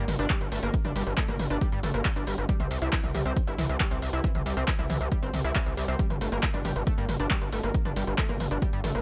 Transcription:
0.08 G1, open hi-hat, mid tom
0.19 G1 D4, closed hi-hat
0.30 G3, kick, clap, closed hi-hat
0.41 G1, closed hi-hat
0.52 G1 A3, open hi-hat
0.63 G1 A#3, closed hi-hat
0.74 kick, closed hi-hat
0.85 G1 D4, closed hi-hat, mid tom
0.96 G1 G3, open hi-hat
1.07 G1, closed hi-hat
1.18 A3, kick, clap, closed hi-hat
1.28 G1 A#3, closed hi-hat, mid tom
1.39 G1, open hi-hat, mid tom
1.50 G1 D4, closed hi-hat
1.61 G3, kick, closed hi-hat
1.72 G2, closed hi-hat
1.83 G1 A3, open hi-hat, mid tom
1.94 G1 A#3, closed hi-hat
2.05 kick, clap, closed hi-hat
2.16 G1 D4, closed hi-hat
2.27 G1 G3, open hi-hat
2.38 G1, closed hi-hat
2.49 G3, kick, closed hi-hat
2.60 C2 C4, closed hi-hat, mid tom
2.71 C2, open hi-hat
2.82 C2 E4, closed hi-hat
2.93 E3, kick, clap, closed hi-hat
3.04 C2, closed hi-hat, mid tom
3.15 C2 G3, open hi-hat, mid tom
3.26 C2 C4, closed hi-hat
3.37 kick, closed hi-hat
3.47 G1 E4, closed hi-hat
3.58 C2 E3, open hi-hat, mid tom
3.69 C2, closed hi-hat
3.80 G3, kick, clap, closed hi-hat
3.91 C2 C4, closed hi-hat
4.02 C2, open hi-hat
4.13 C2 E4, closed hi-hat
4.24 E3, kick, closed hi-hat
4.35 C2, closed hi-hat, mid tom
4.46 C2 G3, open hi-hat
4.57 C2 C4, closed hi-hat
4.68 kick, clap, closed hi-hat
4.79 C2 E4, closed hi-hat, mid tom
4.90 C2 E3, open hi-hat, mid tom
5.01 C2, closed hi-hat
5.12 G3, kick, closed hi-hat
5.22 G1 C4, closed hi-hat
5.33 C2, open hi-hat, mid tom
5.44 C2 E4, closed hi-hat
5.55 E3, kick, clap, closed hi-hat
5.66 C2, closed hi-hat
5.77 C2 G3, open hi-hat
5.88 C2 C4, closed hi-hat
5.99 G3, kick, closed hi-hat
6.10 G1, closed hi-hat, mid tom
6.21 G1 A3, open hi-hat
6.32 G1 A#3, closed hi-hat
6.43 kick, clap, closed hi-hat
6.54 G1 D4, closed hi-hat, mid tom
6.65 G1 G3, open hi-hat, mid tom
6.76 G1, closed hi-hat
6.87 A3, kick, closed hi-hat
6.98 G2 A#3, closed hi-hat
7.09 G1, open hi-hat, mid tom
7.20 G1 D4, closed hi-hat
7.31 G3, kick, clap, closed hi-hat
7.42 G1, closed hi-hat
7.52 G1 A3, open hi-hat
7.63 G1 A#3, closed hi-hat
7.74 kick, closed hi-hat
7.85 G1 D4, closed hi-hat, mid tom
7.96 G1 G3, open hi-hat
8.07 G1, closed hi-hat
8.18 A3, kick, clap, closed hi-hat
8.29 G1 A#3, closed hi-hat, mid tom
8.40 G1, open hi-hat, mid tom
8.51 G1 D4, closed hi-hat
8.62 G3, kick, closed hi-hat
8.73 G2, closed hi-hat
8.84 G1 A3, open hi-hat, mid tom
8.95 G1 A#3, closed hi-hat

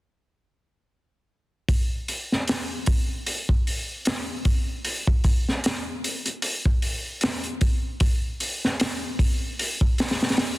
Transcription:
1.69 kick, open hi-hat
2.08 open hi-hat
2.32 snare
2.48 snare, open hi-hat
2.86 kick, open hi-hat
3.26 open hi-hat
3.49 kick
3.67 open hi-hat
4.05 snare, open hi-hat
4.45 kick, open hi-hat
4.85 open hi-hat
5.07 kick
5.24 kick, open hi-hat
5.49 snare
5.64 snare, open hi-hat
6.04 open hi-hat
6.26 closed hi-hat
6.42 open hi-hat
6.65 kick
6.82 open hi-hat
7.21 snare, open hi-hat
7.44 closed hi-hat
7.61 kick, open hi-hat
8.00 kick, open hi-hat
8.40 open hi-hat
8.65 snare
8.80 snare, open hi-hat
9.19 kick, open hi-hat
9.59 open hi-hat
9.81 kick
9.98 snare, open hi-hat
10.08 snare, open hi-hat
10.20 snare, open hi-hat
10.29 snare, open hi-hat
10.37 snare, open hi-hat

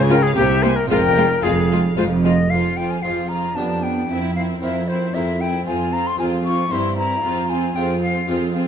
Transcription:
Already playing: C#2 C#3 G#3 F4 G#4
0.00 G#5
0.09 C#4 F4 A#4 G5
0.23 G#4 F5
0.33 C4 G4 A#4
0.37 C2 C3 A#3 G4 E5
0.63 A#3 G4 C5 G#5
0.76 A#4 G5
0.86 C4 F4 G#4 A#4
0.90 F1 F2 G#3 F4 G5
1.17 G#3 F4
1.43 F1 F2 G#3 F4 G#4 F5
1.71 G#3 F4
1.97 F1 F2 G#3 F4 C5
2.24 G#3 F4 D#5
2.50 F2 F3 F4 G#4 F5
2.77 F3 F4 G#4 G5
2.91 G#5
3.02 F2 F3 C4 F4 G#4 F5
3.28 F3 F4 G#4 A#5
3.55 F2 B3 D4 G4 A5
3.83 B3 D4 G4 G5
4.09 F2 C4 E4 A#4
4.35 C4 E4 A#4 F5
4.62 F2 C4 E4 A#4 E5
4.88 C4 E4 A#4 C5
5.14 F2 C4 E4 A#4 E5
5.40 C4 E4 A#4 G5
5.66 F2 C4 F4 G#4 G#5
5.93 C4 F4 G#4 A#5
6.07 C6
6.18 F2 C4 F4 G#4 G#5
6.44 C4 F4 G#4 C#6
6.71 G2 C4 E4 A#4 C6
6.97 C4 E4 A#4 A#5
7.23 F2 C4 F4 G#4
7.49 C4 F4 G#4 G#5
7.74 F2 C4 F4 G#4 G5
8.01 C4 F4 G#4 F5
8.27 F2 C4 F4 G#4
8.53 C4 F4 G#4

